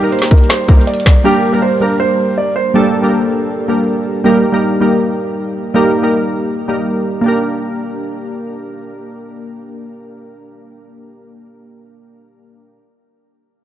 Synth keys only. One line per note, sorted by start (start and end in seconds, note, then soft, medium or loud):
0.00 0.02 G3 medium
0.00 0.47 G3 medium
0.00 0.03 A#3 medium
0.00 0.47 A#3 medium
0.00 0.03 D#4 medium
0.00 0.47 D#4 medium
0.00 0.03 G4 medium
0.00 0.48 G4 medium
0.00 0.04 A#4 loud
0.00 0.48 A#4 medium
0.68 1.06 G3 medium
0.68 1.06 A#3 medium
0.68 1.07 D#4 medium
0.68 1.07 G4 medium
0.68 1.07 A#4 medium
1.24 1.44 G3 medium
1.24 1.44 A#3 medium
1.24 1.44 D4 medium
1.24 1.44 G4 medium
1.24 1.44 A#4 loud
1.52 1.72 G3 medium
1.52 1.72 A#3 medium
1.52 1.72 D4 medium
1.52 1.72 G4 medium
1.52 1.72 A#4 medium
1.80 2.31 G3 medium
1.80 2.32 A#3 medium
1.80 2.32 D4 medium
1.80 2.32 G4 medium
1.80 2.32 A#4 medium
2.74 2.93 G3 medium
2.74 2.94 A#3 medium
2.74 2.94 D4 medium
2.74 2.94 G4 medium
2.74 2.94 A4 loud
3.02 3.47 G3 medium
3.02 3.47 A#3 medium
3.02 3.47 D4 medium
3.02 3.48 G4 medium
3.02 3.48 A#4 medium
3.68 4.06 G3 medium
3.68 4.07 A#3 medium
3.68 4.07 D4 medium
3.68 4.07 G4 medium
3.68 4.07 A#4 medium
4.24 4.43 G3 medium
4.24 4.44 A#3 medium
4.24 4.44 D#4 medium
4.24 4.44 G4 medium
4.24 4.44 A#4 loud
4.52 4.72 G3 medium
4.52 4.72 A#3 medium
4.52 4.72 D#4 medium
4.52 4.72 G4 medium
4.52 4.72 A#4 medium
4.80 5.31 G3 medium
4.80 5.32 A#3 medium
4.80 5.32 D#4 medium
4.80 5.32 G4 medium
4.80 5.32 A#4 medium
5.74 5.93 G3 medium
5.74 5.94 A#3 medium
5.74 5.94 D#4 medium
5.74 5.94 G4 medium
5.74 5.94 A#4 loud
6.02 6.47 G3 medium
6.02 6.47 A#3 medium
6.02 6.47 D#4 medium
6.02 6.48 G4 medium
6.02 6.48 A#4 medium
6.68 7.06 G3 medium
6.68 7.07 A#3 medium
6.68 7.07 D#4 medium
6.68 7.07 G4 medium
6.68 7.07 A#4 medium
7.21 11.37 A#3 medium
7.21 11.39 D4 medium
7.26 11.41 G4 medium
7.26 11.43 A#4 medium